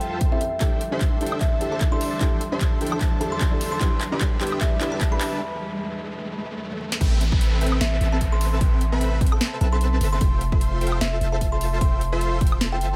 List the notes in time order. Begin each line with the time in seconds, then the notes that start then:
Already playing: F2 F3 G3 F4 A4 C5 E5 G5 A5, riser
0.01 closed hi-hat
0.21 kick, closed hi-hat
0.31 C4 E4 G4 C5 E5
0.41 E2 E3 D4 E5, closed hi-hat
0.60 D4 E4 G4 A4 C5 E5 G5, kick, clap, closed hi-hat
0.81 closed hi-hat
0.91 D4 E4 G4 A4 C5 E5 C6
1.01 kick, clap, closed hi-hat
1.20 D4 E4 G4 A4 C5 E5 G5, closed hi-hat
1.26 closed hi-hat
1.32 high woodblock
1.41 D4 E5, kick, clap, closed hi-hat
1.60 D4 E4 G4 A4, closed hi-hat
1.72 A5
1.81 kick, clap, closed hi-hat
1.91 D4 E4 G4 A4 C6
2.01 open hi-hat
2.20 D4 E4 G4 A4 C5 G5, kick, clap, closed hi-hat
2.41 closed hi-hat
2.51 D4 E4 G4 A4 C5 E5 C6
2.61 kick, clap, closed hi-hat
2.80 D4 E4 G4 A4 C5 E5 G5, closed hi-hat
2.87 closed hi-hat
2.92 A5, high woodblock
3.01 D4 A4 C5 E5 A5, kick, clap, closed hi-hat
3.20 D4 E4 G4 A4 A5, closed hi-hat
3.32 C6
3.41 kick, clap, closed hi-hat
3.51 D4 E4 G4 A4
3.61 open hi-hat
3.72 C6
3.80 G3 D4 E4 G4 B4 E5 G5 C6, kick, clap, closed hi-hat
4.01 clap, closed hi-hat
4.11 D4 E4 G4 B4 D5 E5 B5
4.21 kick, clap, closed hi-hat
4.40 D4 E4 G4 B4 E5 G5, clap, closed hi-hat
4.47 closed hi-hat
4.52 high woodblock
4.61 G4 E5 A5, kick, clap, closed hi-hat
4.80 D4 E4 G4 B4, clap, closed hi-hat
4.92 A5
5.01 kick, clap, closed hi-hat
5.11 D4 E4 G4 B4 B5
5.21 clap, open hi-hat
6.72 high tom
6.81 mid tom
6.92 snare
7.01 A1 C4 A4 B4 E5 G5, kick, closed hi-hat, crash, downlifter
7.21 closed hi-hat
7.32 C4 A4 B4 E5 B5, kick
7.41 closed hi-hat
7.61 C4 A4 B4 E5 G5, closed hi-hat
7.67 closed hi-hat
7.72 high woodblock
7.81 A1 C4 A4 B4 E5 A5, snare, closed hi-hat
8.01 A1, closed hi-hat
8.12 A5
8.21 kick, closed hi-hat
8.32 C6
8.41 open hi-hat
8.61 C4 A4 G5, kick, closed hi-hat
8.81 closed hi-hat
8.92 C4 A4 B4 E5 B5
9.01 closed hi-hat
9.21 C4 A4 G5, kick, closed hi-hat
9.27 closed hi-hat
9.32 A5, high woodblock
9.41 C4 A4 B4 E5 A5, snare, closed hi-hat
9.61 B1 A5, closed hi-hat
9.73 C6
9.81 closed hi-hat
10.01 G1, open hi-hat
10.12 C6
10.21 F1 F4 C6, kick, closed hi-hat
10.41 closed hi-hat
10.52 F4 A4 C5 E5 C6, kick
10.61 closed hi-hat
10.81 F4 A4 C5 E5 G5, closed hi-hat
10.87 closed hi-hat
10.92 high woodblock
11.01 F1 A4 E5 A5, snare, closed hi-hat
11.21 F1, closed hi-hat
11.32 A5
11.41 kick, closed hi-hat
11.52 C6
11.61 open hi-hat
11.81 F4 C5 G5 C6, kick, closed hi-hat
12.01 closed hi-hat
12.12 F4 A4 C5 E5 C6
12.21 closed hi-hat
12.41 F4 A4 C5 E5 G5, kick, closed hi-hat
12.47 closed hi-hat
12.52 high woodblock
12.61 F4 A4 C5 E5 A5, snare, closed hi-hat
12.72 G5
12.81 G1, closed hi-hat